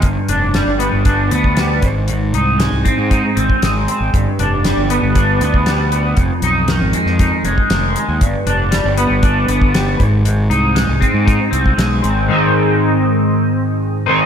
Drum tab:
HH |x-x-x-x-x-x-x-x-|x-x-x-x-x-x-x-x-|x-x-x-x-x-x-x-x-|x-x-x-x-x-x-x-x-|
SD |----o-------o---|----o-------o---|----o-------o---|----o--o----o---|
BD |o-------o--o--o-|------o-o--o----|o-------o--o----|o-------o--o----|

HH |x-x-x-x-x-x-x-x-|x-x-x-x-x-x-x-x-|----------------|
SD |----o-------o---|----o-------o---|----------------|
BD |o-------o--o--o-|------o-o--o----|----------------|